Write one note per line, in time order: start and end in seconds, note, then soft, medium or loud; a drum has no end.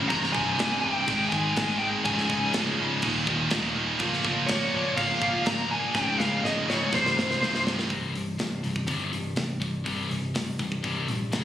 0.09 0.29 C1 medium
0.09 0.34 C2 medium
0.09 0.34 G2 medium
0.09 0.34 C3 loud
0.09 0.32 A#5 loud
0.09 kick loud
0.09 crash medium
0.23 snare soft
0.33 0.54 C1 loud
0.33 0.57 C2 medium
0.33 0.57 G2 medium
0.33 0.58 C3 medium
0.33 0.79 G#5 loud
0.33 kick medium
0.58 0.79 C1 loud
0.58 0.82 C2 medium
0.58 0.83 G2 loud
0.58 0.83 C3 loud
0.58 snare loud
0.58 crash medium
0.80 1.03 C1 loud
0.80 1.06 C2 medium
0.80 0.91 G#5 loud
0.84 1.07 G2 medium
0.84 1.07 C3 medium
0.91 1.29 G5 loud
1.07 1.27 G#1 medium
1.07 1.31 G#2 loud
1.07 1.31 D#3 loud
1.07 1.32 G#3 loud
1.07 kick medium
1.07 crash medium
1.29 1.51 G#1 medium
1.29 1.55 G#2 medium
1.29 1.55 D#3 medium
1.29 1.52 G#5 loud
1.29 kick medium
1.29 snare soft
1.33 1.56 G#3 medium
1.54 1.95 G#1 loud
1.54 1.80 G#2 medium
1.54 1.80 D#3 medium
1.54 1.81 G#3 loud
1.54 1.78 G#5 medium
1.54 snare loud
1.54 crash medium
1.78 2.04 G#2 medium
1.78 2.04 D#3 medium
1.78 2.04 G#3 loud
1.78 1.85 G5 medium
2.05 2.25 C#1 medium
2.05 2.28 C#2 medium
2.05 2.29 G#2 medium
2.05 2.29 C#3 loud
2.05 2.50 G#5 medium
2.05 kick loud
2.05 crash medium
2.18 snare soft
2.29 2.49 C#1 loud
2.29 2.53 C#2 medium
2.29 2.54 G#2 medium
2.29 2.54 C#3 medium
2.29 kick medium
2.53 2.73 C#1 medium
2.53 2.78 C#2 medium
2.53 2.79 G#2 loud
2.53 2.78 C#3 loud
2.53 snare loud
2.53 crash medium
2.79 2.98 C#1 medium
2.79 3.02 C#2 medium
2.79 3.02 G#2 loud
2.79 3.02 C#3 medium
3.02 3.22 D#1 loud
3.02 3.27 D#2 loud
3.02 3.27 A#2 loud
3.02 3.28 D#3 loud
3.02 kick medium
3.02 crash medium
3.27 3.46 D#1 loud
3.27 3.50 D#2 medium
3.27 3.50 A#2 medium
3.27 3.51 D#3 medium
3.27 kick medium
3.50 3.90 D#1 loud
3.50 3.74 D#2 medium
3.50 3.74 A#2 medium
3.50 3.75 D#3 loud
3.50 snare loud
3.50 crash medium
3.75 3.98 D#2 medium
3.75 3.98 A#2 loud
3.75 3.99 D#3 medium
3.99 4.19 C#1 medium
3.99 4.22 A#2 loud
3.99 4.23 F3 loud
3.99 4.23 A#3 loud
3.99 kick loud
3.99 crash medium
4.13 snare soft
4.24 4.44 C#1 loud
4.24 4.47 A#2 medium
4.24 4.47 F3 medium
4.24 4.47 A#3 loud
4.24 kick medium
4.47 4.67 C#1 loud
4.47 4.72 A#2 medium
4.47 4.73 F3 medium
4.47 4.72 A#3 loud
4.47 4.93 C#5 loud
4.47 snare loud
4.47 crash medium
4.73 4.92 C#1 loud
4.73 4.96 A#2 medium
4.73 4.97 F3 medium
4.73 4.97 A#3 medium
4.97 5.17 C#1 loud
4.97 5.20 A#2 loud
4.97 5.20 F3 loud
4.97 5.21 A#3 loud
4.97 5.42 F5 medium
4.97 kick loud
4.97 crash medium
5.21 5.41 C#1 loud
5.21 5.44 A#2 medium
5.21 5.46 F3 loud
5.21 5.46 A#3 medium
5.21 kick medium
5.46 5.84 C#1 loud
5.46 5.68 A#2 medium
5.46 5.68 F3 loud
5.46 5.69 A#3 loud
5.46 5.71 A#5 medium
5.46 snare loud
5.46 crash medium
5.69 5.93 A#2 loud
5.69 5.93 F3 loud
5.69 5.93 A#3 loud
5.69 5.95 G#5 loud
5.94 6.14 C#1 medium
5.94 6.18 C#2 medium
5.94 6.18 G#2 loud
5.94 6.19 C#3 loud
5.94 6.20 G5 loud
5.94 kick loud
5.94 snare medium
6.18 6.38 C#1 loud
6.18 6.43 C#2 medium
6.18 6.42 G#2 medium
6.18 6.43 C#3 medium
6.18 6.43 F5 loud
6.18 snare medium
6.43 6.62 C#1 loud
6.43 6.66 C#2 loud
6.43 6.67 G#2 loud
6.43 6.68 C#3 loud
6.43 6.67 D#5 loud
6.43 snare medium
6.67 6.87 C#1 loud
6.67 6.90 C#2 medium
6.67 6.91 G#2 medium
6.67 6.91 C#3 medium
6.67 6.94 C#5 medium
6.67 snare medium
6.92 7.12 C1 loud
6.92 7.15 C2 loud
6.92 7.16 G2 loud
6.92 7.16 C3 loud
6.92 7.62 C5 medium
6.92 kick medium
6.92 snare loud
7.06 snare medium
7.16 7.35 C1 medium
7.16 7.39 C2 medium
7.16 7.40 G2 medium
7.16 7.40 C3 medium
7.16 snare medium
7.31 snare medium
7.41 7.90 C1 medium
7.41 7.63 C2 medium
7.41 7.64 G2 loud
7.41 7.64 C3 loud
7.41 snare loud
7.55 snare medium
7.64 7.88 C2 medium
7.64 7.88 G2 medium
7.64 7.88 C3 medium
7.64 snare loud
7.79 snare loud
7.89 8.13 C1 medium
7.89 8.12 C2 medium
7.89 8.12 G2 medium
7.89 8.13 C3 medium
7.89 kick medium
7.89 open hi-hat medium
8.13 8.38 C1 medium
8.13 8.35 C2 medium
8.13 8.36 G2 medium
8.13 open hi-hat soft
8.38 8.62 C1 medium
8.38 8.60 C2 medium
8.38 8.61 G2 medium
8.38 snare loud
8.38 open hi-hat medium
8.63 8.86 C1 medium
8.63 8.85 C2 medium
8.63 8.85 G2 medium
8.63 open hi-hat medium
8.76 kick medium
8.87 9.10 G1 medium
8.87 9.10 C2 medium
8.87 9.10 G2 medium
8.87 9.11 C3 medium
8.87 kick medium
8.87 open hi-hat medium
9.11 9.35 C1 medium
9.11 9.33 C2 medium
9.11 9.33 G2 medium
9.11 open hi-hat soft
9.36 9.82 C1 medium
9.36 9.58 C2 medium
9.36 9.58 G2 medium
9.36 snare medium
9.36 open hi-hat medium
9.60 9.82 C2 medium
9.60 9.82 G2 medium
9.60 kick medium
9.60 open hi-hat soft
9.84 10.09 C1 medium
9.84 10.08 C2 medium
9.84 10.08 G2 medium
9.84 10.08 C3 medium
9.84 kick medium
9.84 open hi-hat medium
10.09 10.33 C1 medium
10.09 10.32 C2 medium
10.09 10.32 G2 medium
10.09 open hi-hat soft
10.34 10.57 C1 medium
10.34 10.56 C2 medium
10.34 10.56 G2 medium
10.34 snare loud
10.34 open hi-hat medium
10.59 10.82 C1 medium
10.59 10.81 C2 medium
10.59 10.81 G2 medium
10.59 kick medium
10.59 open hi-hat medium
10.72 kick medium
10.83 11.07 C1 medium
10.83 11.06 C2 medium
10.83 11.06 G2 medium
10.83 11.07 C3 loud
10.83 kick medium
10.83 open hi-hat medium
11.08 11.31 A#1 medium
11.08 11.30 C2 medium
11.08 11.30 G2 medium
11.08 open hi-hat medium
11.32 11.44 F#1 medium
11.32 11.44 F#2 medium
11.32 11.44 C#3 medium
11.32 11.44 F#3 medium
11.32 snare medium
11.32 open hi-hat medium